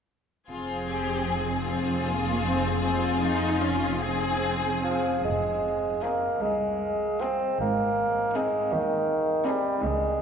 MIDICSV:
0, 0, Header, 1, 7, 480
1, 0, Start_track
1, 0, Key_signature, -4, "minor"
1, 0, Tempo, 790514
1, 302, Time_signature, 6, 3, 24, 8
1, 1259, Tempo, 766284
1, 2219, Tempo, 820793
1, 3179, Tempo, 784314
1, 4619, Tempo, 745342
1, 6305, End_track
2, 0, Start_track
2, 0, Title_t, "Violin section"
2, 0, Program_c, 0, 48
2, 300, Note_on_c, 0, 68, 33
2, 998, Note_off_c, 0, 68, 0
2, 1020, Note_on_c, 0, 65, 30
2, 1730, Note_off_c, 0, 65, 0
2, 1737, Note_on_c, 0, 65, 40
2, 2437, Note_off_c, 0, 65, 0
2, 2450, Note_on_c, 0, 68, 38
2, 3059, Note_off_c, 0, 68, 0
2, 3660, Note_on_c, 0, 68, 39
2, 3836, Note_off_c, 0, 68, 0
2, 4388, Note_on_c, 0, 68, 36
2, 4563, Note_off_c, 0, 68, 0
2, 5105, Note_on_c, 0, 68, 43
2, 5280, Note_off_c, 0, 68, 0
2, 5824, Note_on_c, 0, 68, 47
2, 5998, Note_off_c, 0, 68, 0
2, 6305, End_track
3, 0, Start_track
3, 0, Title_t, "Violin section"
3, 0, Program_c, 1, 48
3, 302, Note_on_c, 1, 65, 32
3, 527, Note_off_c, 1, 65, 0
3, 552, Note_on_c, 1, 67, 32
3, 783, Note_on_c, 1, 68, 32
3, 788, Note_off_c, 1, 67, 0
3, 2438, Note_off_c, 1, 68, 0
3, 2445, Note_on_c, 1, 68, 41
3, 3044, Note_off_c, 1, 68, 0
3, 3656, Note_on_c, 1, 65, 33
3, 3833, Note_off_c, 1, 65, 0
3, 4376, Note_on_c, 1, 65, 38
3, 4557, Note_off_c, 1, 65, 0
3, 5105, Note_on_c, 1, 63, 40
3, 5280, Note_off_c, 1, 63, 0
3, 5819, Note_on_c, 1, 63, 45
3, 5995, Note_off_c, 1, 63, 0
3, 6305, End_track
4, 0, Start_track
4, 0, Title_t, "Viola section"
4, 0, Program_c, 2, 48
4, 302, Note_on_c, 2, 60, 30
4, 999, Note_off_c, 2, 60, 0
4, 1027, Note_on_c, 2, 60, 33
4, 1257, Note_off_c, 2, 60, 0
4, 1261, Note_on_c, 2, 58, 39
4, 1496, Note_on_c, 2, 60, 40
4, 1501, Note_off_c, 2, 58, 0
4, 1731, Note_off_c, 2, 60, 0
4, 1737, Note_on_c, 2, 60, 37
4, 1972, Note_off_c, 2, 60, 0
4, 1976, Note_on_c, 2, 63, 42
4, 2214, Note_off_c, 2, 63, 0
4, 2221, Note_on_c, 2, 61, 40
4, 2451, Note_off_c, 2, 61, 0
4, 2452, Note_on_c, 2, 60, 40
4, 3048, Note_off_c, 2, 60, 0
4, 3657, Note_on_c, 2, 60, 33
4, 3834, Note_off_c, 2, 60, 0
4, 4384, Note_on_c, 2, 60, 36
4, 4561, Note_off_c, 2, 60, 0
4, 5106, Note_on_c, 2, 60, 39
4, 5280, Note_off_c, 2, 60, 0
4, 5812, Note_on_c, 2, 60, 45
4, 5992, Note_off_c, 2, 60, 0
4, 6305, End_track
5, 0, Start_track
5, 0, Title_t, "Bassoon"
5, 0, Program_c, 3, 70
5, 2938, Note_on_c, 3, 53, 50
5, 3163, Note_off_c, 3, 53, 0
5, 3178, Note_on_c, 3, 56, 48
5, 3654, Note_on_c, 3, 58, 45
5, 3664, Note_off_c, 3, 56, 0
5, 3892, Note_on_c, 3, 56, 51
5, 3901, Note_off_c, 3, 58, 0
5, 4378, Note_on_c, 3, 60, 53
5, 4388, Note_off_c, 3, 56, 0
5, 4618, Note_off_c, 3, 60, 0
5, 4621, Note_on_c, 3, 58, 45
5, 5105, Note_on_c, 3, 56, 52
5, 5115, Note_off_c, 3, 58, 0
5, 5344, Note_on_c, 3, 51, 53
5, 5354, Note_off_c, 3, 56, 0
5, 5812, Note_on_c, 3, 55, 50
5, 5822, Note_off_c, 3, 51, 0
5, 6053, Note_on_c, 3, 56, 53
5, 6063, Note_off_c, 3, 55, 0
5, 6305, Note_off_c, 3, 56, 0
5, 6305, End_track
6, 0, Start_track
6, 0, Title_t, "Cello section"
6, 0, Program_c, 4, 48
6, 309, Note_on_c, 4, 41, 35
6, 3039, Note_off_c, 4, 41, 0
6, 3183, Note_on_c, 4, 41, 42
6, 3765, Note_off_c, 4, 41, 0
6, 3902, Note_on_c, 4, 36, 44
6, 4492, Note_off_c, 4, 36, 0
6, 4622, Note_on_c, 4, 44, 43
6, 5208, Note_off_c, 4, 44, 0
6, 5346, Note_on_c, 4, 39, 51
6, 5925, Note_off_c, 4, 39, 0
6, 6053, Note_on_c, 4, 37, 55
6, 6305, Note_off_c, 4, 37, 0
6, 6305, End_track
7, 0, Start_track
7, 0, Title_t, "Double bass section"
7, 0, Program_c, 5, 48
7, 296, Note_on_c, 5, 29, 32
7, 3032, Note_off_c, 5, 29, 0
7, 3178, Note_on_c, 5, 29, 44
7, 3632, Note_off_c, 5, 29, 0
7, 4622, Note_on_c, 5, 32, 41
7, 5078, Note_off_c, 5, 32, 0
7, 6055, Note_on_c, 5, 37, 50
7, 6305, Note_off_c, 5, 37, 0
7, 6305, End_track
0, 0, End_of_file